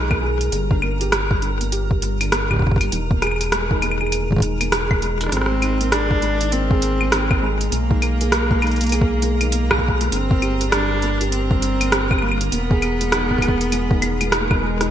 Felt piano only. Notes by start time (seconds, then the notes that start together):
Already playing: D#3 G#3 A#3 G#4
0.11 A#3
0.22 G#4
0.52 G3
0.71 D3
0.82 A#3
1.01 G4
1.31 G3
1.42 D3
1.61 A#3
1.72 G4
2.02 G3
2.21 D3
2.32 A#3
2.51 G4
2.81 G3
2.92 D#3
3.11 A#3
3.22 G#4
3.52 G#3
3.71 D#3
3.82 A#3
4.01 G#4
4.31 G#3
4.42 D#3
4.61 A#3
4.72 G#4
5.02 G#3
5.21 D#3
5.51 G#3
5.62 D#3
5.81 A#3
5.92 G#4
6.22 G#3
6.41 D#3
6.52 A#3
6.71 G#4
7.01 G#3
7.12 D#3
7.31 A#3
7.42 G#4
7.72 G#3
7.91 D#3
8.02 A#3
8.21 G#4
8.51 G#3
8.62 D#3
8.81 A#3
8.92 G#4
9.22 G#3
9.41 D#3
9.52 A#3
9.71 G#4
10.01 G#3
10.12 D3
10.31 A#3
10.42 G4
10.72 G3
10.91 D3
11.02 A#3
11.21 G4
11.51 G3
11.62 D3
11.81 A#3
11.92 G4
12.22 G3
12.41 D3
12.52 A#3
12.71 G#4
13.01 G#3
13.12 D#3
13.31 A#3
13.42 G#4
13.72 G#3
13.91 D#3
14.02 G#3
14.21 G#3
14.32 D#4
14.51 B3
14.62 G#3
14.81 D#4